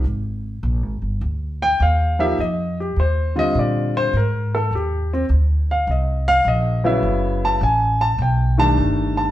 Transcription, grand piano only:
X:1
M:4/4
L:1/8
Q:"Swing" 1/4=103
K:Abdor
V:1 name="Grand piano"
z4 z =g f _f | e =G =c e =d c B =A | =G =C z f e f e _f- | _f =a _a =a =g a2 a |]
V:2 name="Grand piano"
z6 z [F,B,E=G] | z3 [=D,=G,=CF]3 z2 | z6 z [D,G,C_F]- | [D,G,C_F]2 z3 [^D,=G,=A,=D]3 |]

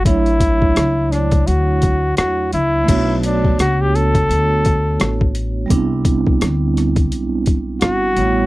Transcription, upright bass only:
X:1
M:4/4
L:1/8
Q:"Swing 16ths" 1/4=85
K:Bm
V:1 name="Upright bass" clef=bass
A,,,2 C,,2 D,,2 E,, C,, | B,,,2 C,,2 D,,2 A,,,2 | =C,,2 D,,2 B,,,2 G,,, A,,, |]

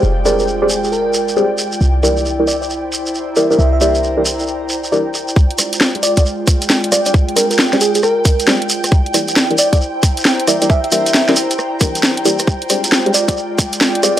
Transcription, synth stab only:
X:1
M:4/4
L:1/16
Q:"Swing 16ths" 1/4=135
K:Fdor
V:1 name="Synth stab"
z2 [GAcd]3 [GAcd] z6 [GAcd] z3 | z2 [=EGBd]3 [EGBd] z8 [EGB=e] [EGBd] | z2 [=EGBd]3 [EGBd] z6 [EGBd] z3 | z2 [GAcd]3 [GAcd] z8 [GAcf] [GAc] |
z2 [GAcd]3 [GAcd] z6 [GAcd] z3 | z2 [=EGBd]3 [EGBd] z8 [EGB=e] [EGBd] | z2 [=EGBd]3 [EGBd] z4 [EGBd]4 [EGBd] z | z2 [GAcd]3 [GAcd] z8 [GAcf] z |]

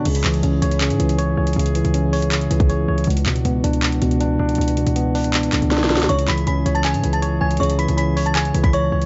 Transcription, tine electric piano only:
X:1
M:4/4
L:1/8
Q:1/4=159
K:C#phr
V:1 name="Tine electric piano"
C, E, C c C, E, c c | C, E, C c C, E, c c | C,, B,, B, D2 B,, D D- | D B,, B, D2 D, D D |
C, E, C c C, E, c c | C, E, C c C, E, c c |]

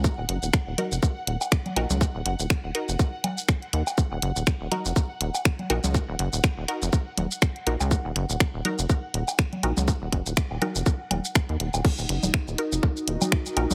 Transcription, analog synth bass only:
X:1
M:4/4
L:1/16
Q:"Swing 16ths" 1/4=122
K:Ebm
V:1 name="Analog synth bass" clef=bass
z E,,, G,,, E,,, z E,,, z F,,, z2 E,,, z3 B,,, D,, | z E,,, G,,, E,,, z E,,, z F,,, z6 E,, z | z E,,, G,,, E,,, z E,,, z F,,, z2 E,,, z3 B,,, D,, | z E,,, G,,, E,,, z E,,, z F,,, z2 E,,, z3 B,,, D,, |
z E,,, G,,, E,,, z E,,, z F,,, z2 E,,, z3 B,,, D,, | z E,,, G,,, E,,, z E,,, z F,,, z2 E,,, z2 E,, E,,, E,,, | z E,,, G,,, E,,, z E,,, z F,,, z2 E,,, z3 B,,, D,, |]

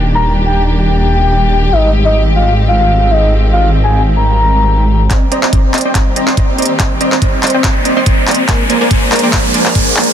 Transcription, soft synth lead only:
X:1
M:4/4
L:1/16
Q:"Swing 16ths" 1/4=142
K:Cm
V:1 name="Soft synth lead"
z b2 z g2 z g8- g | e2 z e2 z f2 z f4 e2 z | z f2 z a2 z b8 z | z16 |
z16 | z16 |]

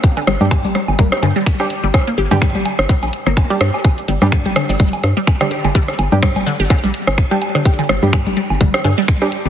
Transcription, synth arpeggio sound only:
X:1
M:4/4
L:1/16
Q:"Swing 16ths" 1/4=126
K:Gm
V:1 name="Synth arpeggio sound" clef=bass
G D, G, z3 G, z B, G D, G, z3 G, | z B, G D, G, z3 G, z2 B, z G, G, z | z2 G, z D, G D, G, z3 G, z D, G D, | G, z3 G, z D, G D, G, z3 G, z D, |
G D, G, z3 G, z D, G D, G, z3 G, |]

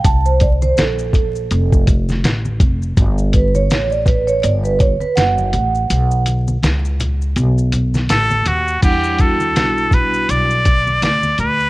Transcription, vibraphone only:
X:1
M:4/4
L:1/16
Q:"Swing 16ths" 1/4=82
K:Edor
V:1 name="Vibraphone"
a ^B d B A6 z6 | z2 B c2 d B c d B c B f4- | f2 z12 z2 | [G,B,DEf]2 [G,B,DEF]6 z8 |]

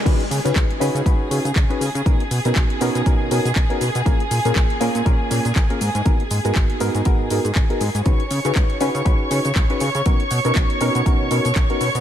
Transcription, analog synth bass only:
X:1
M:4/4
L:1/16
Q:"Swing 16ths" 1/4=120
K:C#mix
V:1 name="Analog synth bass" clef=bass
C,, z C, C, C,, z C, C, C,, z C, C, C,, z C, C, | B,,, z B,, B,, B,,, z B,, B,, B,,, B,, B,, B,, B,,, z B,, B,, | A,,, z A,, A,, A,,, z A,, A,, A,,, z A,, A,, A,,, z G,, G,, | G,,, z G,, G,, G,,, z G,, G,, G,,, G,, G,, G,, G,,, z G,, G,, |
C,, z C, C, C,, z C, C, C,, z C, C, C,, z C, C, | B,,, z B,, B,, B,,, z B,, B,, B,,, B,, B,, B,, B,,, z B,, B,, |]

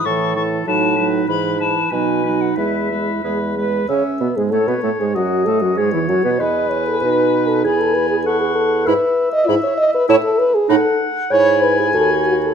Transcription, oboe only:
X:1
M:2/4
L:1/8
Q:1/4=96
K:E
V:1 name="Oboe"
A A B B | B B B B | B B B B | e2 c2 |
d2 c2 | B4 | g2 f2 | e4 |
e z f2 | g4 |]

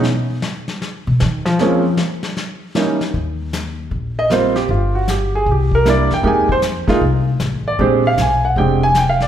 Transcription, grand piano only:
X:1
M:4/4
L:1/8
Q:"Swing" 1/4=155
K:Ebmix
V:1 name="Grand piano"
z8 | [F,A,B,CD] z4 z [_F,G,B,DE] z | [K:Eb] z4 z e [G,B,CFc] G | F _G =G A G B [G,B,D=Ed] g |
[A,B,EGa] c z [A,B,EF] z3 d | [A,CDGc] f a _g [A,CD=G=g] a (3g f d |]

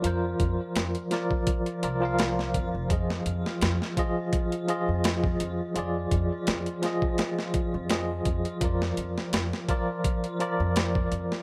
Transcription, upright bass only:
X:1
M:4/4
L:1/16
Q:"Swing 16ths" 1/4=84
K:Fdor
V:1 name="Upright bass" clef=bass
F,,2 F,, z F,, z4 z C,,4 F,, F,,, | F,,2 F,, z F,, z6 F,,3 F,, z | F,,2 F,, z F,, z6 F,,3 F,, z | F,,2 F,, z F,, z6 F,,3 F,, z |]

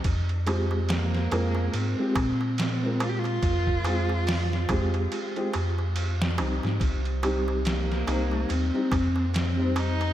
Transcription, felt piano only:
X:1
M:4/4
L:1/16
Q:"Swing 16ths" 1/4=71
K:Fdor
V:1 name="Felt piano"
z2 [A,CFG]4 [A,CFB]3 [A,CFG] z3 [A,CFB]3- | [A,CFB]2 [A,CFA]2 z2 [A,CFG]3 [A,CFG] z4 [G,CEG]2- | [G,CEG]2 [G,CEG]4 [G,CEc]3 [G,CEG] z3 [G,CEc]3 |]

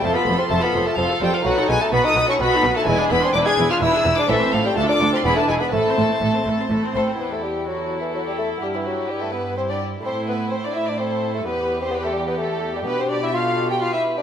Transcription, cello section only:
X:1
M:3/4
L:1/8
Q:1/4=127
K:Am
V:1 name="Cello section" clef=bass
F,, F,, F,, F,, F,, F,, | B,, B,, B,, B,, B,, B,, | E,, E,, E,, E,, E,, E,, | A,, A,, D,, D,, E,, E,, |
A,, A,, A,, A,, A,, A,, | [K:Em] E,,6 | G,,6 | A,,6 |
E,,6 | [K:Gmix] B,,6 |]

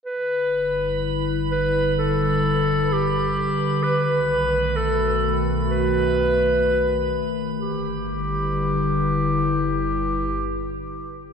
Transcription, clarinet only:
X:1
M:4/4
L:1/8
Q:1/4=64
K:G
V:1 name="Clarinet"
B2 z B A2 G2 | B2 A z B3 z | G8 |]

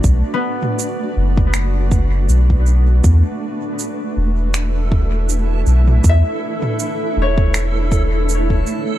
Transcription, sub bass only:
X:1
M:4/4
L:1/8
Q:"Swing 16ths" 1/4=80
K:Edor
V:1 name="Sub bass" clef=bass
B,,, z2 F,,,3 B,,,2 | E,, z2 E,,,4 B,,, | E,, z2 E,,,4 z |]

